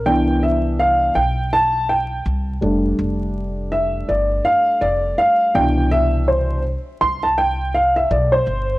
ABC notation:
X:1
M:4/4
L:1/16
Q:"Swing 16ths" 1/4=82
K:C
V:1 name="Upright piano"
g2 e2 f2 g2 a2 g2 z4 | z4 e2 d2 f2 d2 f2 g2 | e2 c2 z2 c' a g2 f e d c3 |]
V:2 name="Upright piano"
[E,B,D]6 z8 [G,A,D]2- | [G,A,D]12- [G,A,D]2 [B,,E,D]2- | [B,,E,D]4 z12 |]
V:3 name="Upright bass" clef=bass
C,,6 B,,,6 C,,2 F,,,2 | F,,,6 G,,,2 z2 F,,,2 z2 C,,2- | C,,6 C,,6 B,,,2 G,,,2 |]